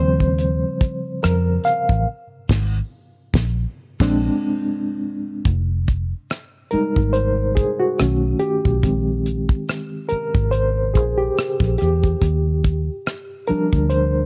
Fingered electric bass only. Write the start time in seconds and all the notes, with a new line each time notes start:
Already playing: D#2
1.25 F2
1.90 A1
2.50 G#1
3.35 A#1
4.01 A#1
5.46 F1
6.74 muted fingered electric bass stroke
6.98 G#1
8.00 B1
8.66 B1
8.84 A#1
10.12 muted fingered electric bass stroke
10.36 G#1
10.96 A#1
11.61 A#1
11.82 E2
12.23 D#2
13.51 muted fingered electric bass stroke
13.74 D2